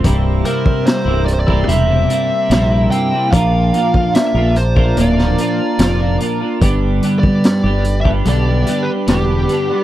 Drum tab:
HH |x-x-x-x-x-x-x-x-|x-x-x-x-x-x-x-x-|x-x-x-x-x-x-x-x-|
SD |----o-------o---|----o----o--o---|----o-------o---|
BD |o--o---o--------|o--o---o--------|o--o---o--------|